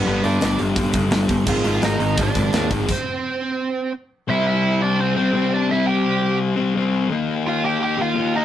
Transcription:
Already playing: distorted electric guitar G2 D3 G3 B3 D4
0.06 picked electric bass G1, distorted electric guitar G2 D3 G3, lead electric guitar B3 B4
0.22 distorted electric guitar G2 D3 G3, picked electric bass G2, lead electric guitar D4 D5, open hi-hat
0.40 picked electric bass G1, distorted electric guitar G2 D3 G3, snare, open hi-hat
0.58 picked electric bass G1, distorted electric guitar G2 D3 G3, open hi-hat
0.75 picked electric bass G1, distorted electric guitar G2 D3 G3, kick, open hi-hat
0.93 picked electric bass G1, distorted electric guitar G2 D3 G3, kick, open hi-hat
1.10 picked electric bass G1, distorted electric guitar G2 D3 G3 B3 D4, snare, open hi-hat
1.27 picked electric bass G1, distorted electric guitar G2 D3 G3, kick, open hi-hat
1.46 picked electric bass G#1, distorted electric guitar G#2 D#3 G#3 C4, lead electric guitar F4 F5, kick, crash
1.50 distorted electric guitar D#4
1.63 picked electric bass G#1, distorted electric guitar G#2 D#3 G#3, open hi-hat
1.81 picked electric bass G#1, distorted electric guitar G#2 D#3 G#3, lead electric guitar D#4 D#5, snare, open hi-hat
1.99 picked electric bass G#1, distorted electric guitar G#2 D#3 G#3, open hi-hat
2.17 picked electric bass G#1, distorted electric guitar G#2 D#3 G#3, lead electric guitar D4, kick, open hi-hat
2.22 lead electric guitar D5
2.35 picked electric bass G#1, distorted electric guitar G#2 D#3 G#3, kick, open hi-hat
2.53 picked electric bass D#2, distorted electric guitar G#2 D#3 G#3, snare, open hi-hat
2.69 picked electric bass G#1, distorted electric guitar G#2 D#3 G#3 C4 D#4, kick, open hi-hat
2.89 lead electric guitar C4 C5, kick, crash
4.28 distorted electric guitar C3 G3 C4, lead electric guitar E4 E5
4.47 lead electric guitar E4 E5
4.82 lead electric guitar D4 D5
5.00 lead electric guitar C4 C5
5.15 distorted electric guitar C3 G3 C4, lead electric guitar C4 C5
5.33 distorted electric guitar C3 G3 C4
5.55 lead electric guitar D4 D5
5.68 distorted electric guitar C3 G3 C4, lead electric guitar E5
5.73 lead electric guitar E4
5.87 lead electric guitar G4 G5
6.56 distorted electric guitar G3 C4
6.60 distorted electric guitar C3
6.74 distorted electric guitar C3 G3 C4
7.08 distorted electric guitar D#3 A#3 D#4
7.47 lead electric guitar F4 F5
7.64 lead electric guitar G4 G5
7.83 lead electric guitar G4 G5
7.98 distorted electric guitar D#3 A#3 D#4, lead electric guitar F4
8.02 lead electric guitar F5
8.15 distorted electric guitar D#3 A#3
8.19 distorted electric guitar D#4
8.36 lead electric guitar D#4 D#5

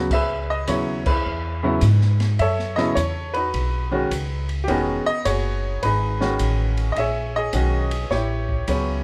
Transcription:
Already playing: upright bass D2
0.11 upright bass C#2, upright piano G#4 B4 E5, kick, crash
0.50 upright piano D#5
0.67 upright bass D#2, upright piano C#3 F#3 B3 E4 C#5, kick, hi-hat pedal, ride
1.06 upright piano E4 G#4 B4, kick, crash
1.26 upright bass E2
1.63 upright piano C#3 F#3 B3 E4
1.81 upright bass G#2, kick, hi-hat pedal, ride
2.01 snare
2.20 snare, ride
2.39 upright bass F#2, upright piano A4 C#5 E5, kick, ride
2.59 snare
2.76 upright piano C#3 F#3 B3 E4 D#5, snare
2.95 upright bass E2, upright piano C#5, kick, hi-hat pedal, ride
3.34 upright piano D#4 F#4 B4, ride
3.54 upright bass B1, kick, ride
3.91 upright piano D#3 G#3 C#4 F#4
4.11 upright bass C#2, kick, hi-hat pedal, ride
4.49 ride
4.64 upright piano D#3 G4
4.68 upright bass E1, upright piano G#3 B3 C#4 D#4 F#4 G#4, kick, ride
5.06 upright piano D#5, muted upright bass stroke
5.25 upright bass F#1, upright piano F#4 G#4 C#5, kick, hi-hat pedal, ride
5.83 upright bass G#1, upright piano D#4 G#4 B4, kick, ride
6.20 upright piano D#3 G#3 C#4 F#4, snare
6.39 upright bass A1, kick, hi-hat pedal, ride
6.77 ride
6.92 upright piano D#5
6.96 upright bass A#1, upright piano G#4 C#5 E5, kick, ride
7.36 upright piano G#4 D#5
7.53 upright bass B1, upright piano D#3 G#3 C#4 F#4, kick, hi-hat pedal, ride
7.91 ride
8.11 upright bass A1, upright piano E4 G4 C#5, kick, snare
8.49 kick
8.68 upright bass C#2, upright piano C#3 F#3 B3 C#4, hi-hat pedal, ride

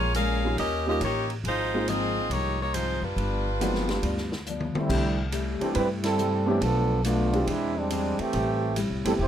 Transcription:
Already playing: upright bass A#1, saxophone section A#3 F4 G#4 C#5
0.14 steel-string acoustic guitar A#2 F3 G#3 C#4, saxophone section C#4 G#4 A#4 F5, hi-hat pedal, ride
0.43 grand piano G3 A#3 C#4 D#4 F4
0.57 upright bass D#2, steel-string acoustic guitar D#3 A#3 C#4 G4, saxophone section C#4 G4 A#4 D#5, ride
0.86 grand piano G3 A#3 C#4 D#4 F4, saxophone section C#4 G4 A#4 D#5
1.00 upright bass A1, steel-string acoustic guitar D#3 A#3 C#4 G4, saxophone section A#3 D#4 G4 C#5, hi-hat pedal, ride
1.30 ride
1.44 upright bass G#1, steel-string acoustic guitar G#2 F3 C4, saxophone section G#3 D#4 F4 C5, ride
1.48 steel-string acoustic guitar D#4
1.74 grand piano G#3 A#3 C4 D#4 F4
1.88 steel-string acoustic guitar G#2 F3 C4 D#4, saxophone section C4 F4 G#4 D#5, hi-hat pedal, ride
2.30 upright bass C2, steel-string acoustic guitar G#2 F3 C4, saxophone section A#3 D#4 G4 C#5, ride
2.34 steel-string acoustic guitar D#4
2.61 saxophone section A#3 D#4 G4 C#5
2.74 steel-string acoustic guitar G#2 F3 C4 D#4, saxophone section G#3 D#4 F4 C5, hi-hat pedal, ride
3.02 upright bass F#1, saxophone section G3 D4 F4 B4
3.16 upright bass G1, steel-string acoustic guitar G2 F3 B3 D4, ride
3.60 steel-string acoustic guitar G2 F3 B3 D4, grand piano G#3 A#3 C4 D#4 F#4, hi-hat pedal, ride
3.75 snare
3.88 grand piano G3 A3 B3 D4 F4, snare, ride
4.02 upright bass D2, steel-string acoustic guitar G2 F3 B3 D4, ride
4.17 snare
4.32 snare
4.46 steel-string acoustic guitar G2 F3 B3 D4, hi-hat pedal
4.60 high tom
4.74 trombone section G3 A3 C4 E4, muted upright bass stroke, high tom
4.89 upright bass C2, steel-string acoustic guitar C3 G3 A3, grand piano G3 A3 C4 D4 E4, kick, crash
4.93 steel-string acoustic guitar E4
5.32 steel-string acoustic guitar C3 G3 A3 E4, hi-hat pedal, ride
5.61 trombone section E3 A3 C4 G4, grand piano G3 A3 C4 D4 E4, muted upright bass stroke, ride
5.74 upright bass G2, steel-string acoustic guitar C3 G3 A3 E4, trombone section G3 C4 E4 B4, ride
6.03 trombone section G3 C4 E4 A4, snare, ride
6.17 steel-string acoustic guitar C3 G3 A3 E4, hi-hat pedal
6.46 trombone section E3 A3 C4 G4, grand piano A3 B3 C#4 D4 G4
6.60 upright bass B1, steel-string acoustic guitar B2 F3 A3 D4, trombone section F3 B3 D4 A4, ride
7.03 steel-string acoustic guitar B2 F3 A3 D4, trombone section A3 B3 D4 F4, hi-hat pedal, ride
7.33 grand piano G#3 C4 D4 E4 G4, ride
7.45 upright bass E2, steel-string acoustic guitar E3 C4 D4 G#4, trombone section G#3 C4 D4 E4, ride
7.75 trombone section G3 G#3 C4 D4
7.90 steel-string acoustic guitar E3 C4 D4 G#4, hi-hat pedal, ride
8.19 trombone section E3 A3 C4 G4, muted upright bass stroke, ride
8.32 upright bass A1, steel-string acoustic guitar A2 G3 C4 E4, ride
8.76 steel-string acoustic guitar A2 G3 C4 E4, hi-hat pedal, ride
8.90 upright bass C2
9.05 upright bass G#1, trombone section G3 C4 E4 A4, grand piano A3 B3 C4 E4 G4, ride
9.18 upright bass E1, steel-string acoustic guitar A2 G3 C4 E4, trombone section A3 E4 G4 C5

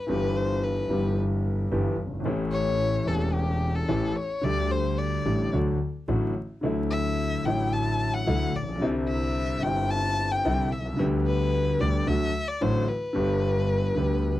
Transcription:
0.07 grand piano G1 G2 E3 G3 B3 G4, double bass G1, violin B4
0.37 violin C5
0.64 violin B4
0.88 grand piano G1 G2 E3 G3 B3 G4, double bass G1
1.71 double bass G1, grand piano G1 G2 E3 G3 B3 G4
1.98 double bass G1
2.06 grand piano F#1
2.13 grand piano G1
2.19 grand piano G#1
2.23 grand piano A1 A2 E3 A3 C#4, double bass A1
2.28 grand piano G4
2.52 violin C#5
3.05 grand piano E1 E2 E3 A3 C#4, double bass E1, violin A4
3.09 grand piano G4
3.34 violin G4
3.75 violin A4
3.88 double bass A1, grand piano A1 A2 E3 A3 C#4 G4
4.16 violin C#5
4.42 double bass D2, grand piano D2 D3 G3 A3 G4, violin D5
4.71 violin C5
4.98 violin D5
5.25 double bass A1, grand piano A1 A2 D3 G3 A3 G4
5.53 double bass D2, grand piano D2 D3 F#3 A3 F#4
6.08 double bass A1, grand piano A1 A2 D3 F#3 A3 F#4
6.63 double bass D2, grand piano D2 D3 F#3 A3 E4
6.90 violin E5
7.44 double bass A1, grand piano A1 A2 D3 F#3 A3 E4, violin G5
7.73 violin A5
8.14 violin F#5
8.27 grand piano D2 D3 F#3 A3 E4, double bass D2
8.55 double bass A#1, violin D5
8.62 grand piano A1
8.69 grand piano A#1
8.75 grand piano B1
8.80 grand piano C2 C3 D3 G3 C4 E4, double bass C2
9.08 violin E5
9.61 double bass G1, grand piano G1 G2 D3 G3 C4, violin G5
9.66 grand piano E4
9.91 violin A5
10.32 violin G5
10.45 double bass C2, grand piano C2 C3 D3 G3 C4 E4
10.72 double bass C2, violin E5
10.79 grand piano B1
10.85 grand piano C2
10.92 grand piano C#2
10.97 double bass D2, grand piano D2 D3 G3 B3 G4
11.26 violin B4
11.80 double bass D2, grand piano D2 D3 G3 B3 G4, violin D5
12.07 grand piano D2 D3 F#3 A3 F#4, double bass D2, violin E5
12.48 violin D5
12.61 grand piano A1 A2 D3 F#3 A3 F#4, double bass A1, violin C5
12.88 violin B4
13.13 grand piano G1 G2 D3 G3 B3, double bass G1
13.17 grand piano G4
13.95 grand piano D2 D3 G3 B3 G4, double bass D2

